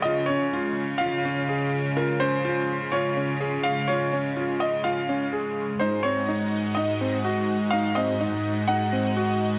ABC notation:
X:1
M:4/4
L:1/8
Q:1/4=125
K:Db
V:1 name="Felt piano"
e d3 f3 z | B c3 d3 f | d3 e f2 z2 | c d3 e4 |
f e3 g3 z |]
V:2 name="Analog synth pad"
[A,DF]8- | [A,DF]8- | [A,DF]8 | [EGe]8- |
[EGe]8 |]
V:3 name="Grand piano"
F D F2 F D A2 | F D F2 F D A2 | F D F2 F D A2 | E C E2 E C G2 |
E C E2 E C G2 |]
V:4 name="Cello section" clef=bass
D,8- | D,8- | D,8 | A,,8- |
A,,8 |]